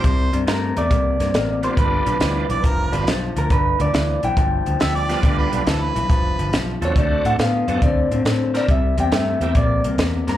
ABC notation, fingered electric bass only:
X:1
M:4/4
L:1/8
Q:"Swing" 1/4=139
K:Gmix
V:1 name="Fingered electric bass" clef=bass
C,, G,, G,, E,, C,, G,, A,,,2 | G,,, B,,, D,, B,,, F,,, G,,, B,,, D,, | G,,, D,, D,, B,,, G,,, D,, D,,2 | D,, B,,, D,, B,,, F,,, G,,, B,,, E,, |
D,, A,, A,, ^F,, D,, A,, A,,2 | C,, E,, G,, E,, _B,,, C,, E,, G,, |]